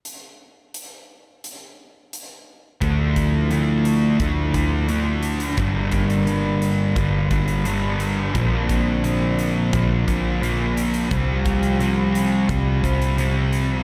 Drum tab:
HH |x---x---x---x---|x-x-x-x-x-x-x-xx|x-xxx-x-x-xxx-x-|x-x-x-x-x-x-x-xx|
BD |----------------|o-o-----o-o-----|o-o-----o-o-----|o-o-----o-o-----|

HH |x-xxx-x-x-xxx-x-|
BD |o-o-----o-o-----|